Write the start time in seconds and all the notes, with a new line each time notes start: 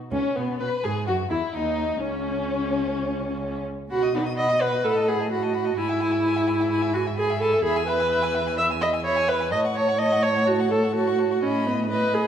0.12 C#2 C#4
0.35 B2 B3
0.60 B2 B4
0.84 G#2 G#4
1.07 F#2 F#4
1.30 E2 E4
1.53 D#2 D#4
2.00 C#2 C#4
3.91 B2 F#4 F#5 B5
4.02 D#5 D#6
4.14 D#4 F#5 B5
4.25 D#5 D#6
4.37 D#5 F#5 B5
4.49 D#5 D#6
4.60 B4 F#5 B5
4.72 D#5 D#6
4.84 A2 A4 F#5 B5
4.95 D#5 A5
5.08 G#4 F#5 B5
5.19 D#5 A5
5.31 F#4 F#5 B5
5.42 D#5 A5
5.53 F#5 B5
5.65 D#5 A5
5.77 G#2 E4 G#5 B5
5.88 E5 G#5
6.00 G#5 B5
6.11 E5 G#5
6.23 G#5 B5
6.34 E5 G#5
6.46 G#5 B5
6.59 E5 G#5
6.70 G#5 B5
6.81 E5 G#5
6.93 F#4 G#5 B5
7.04 E5 G#5
7.17 G#4 G#5 B5
7.28 E5 G#5
7.40 A4 G#5 B5
7.52 E5 G#5
7.64 E2 G#4 E5 B5
7.76 G#5 E6
7.88 B4 E5 B5
8.00 G#5 E6
8.10 E5 B5
8.23 G#5 E6
8.34 E5 B5
8.46 G#5 E6
8.57 E5 B5
8.70 G#5 E6
8.81 D#5 E5 B5
8.93 G#5 E6
9.04 C#5 E5 B5
9.16 G#5 E6
9.28 B4 E5 B5
9.40 G#5 E6
9.52 A2 C#5 D#5 A5
9.65 F#5 C#6
9.75 C#5 A5
9.88 F#5 C#6
9.99 C#5 D#5 A5
10.12 F#5 C#6
10.23 C#5 A5
10.35 F#5 C#6
10.47 F#4 C#5 A5
10.59 F#5 C#6
10.71 A4 C#5 A5
10.83 F#5 C#6
10.95 F#4 C#5 A5
11.07 F#5 C#6
11.19 C#5 A5
11.31 F#5 C#6
11.42 A2 C#4 D#5 B5
11.67 B3
11.90 B4 D#5 B5
12.14 G#4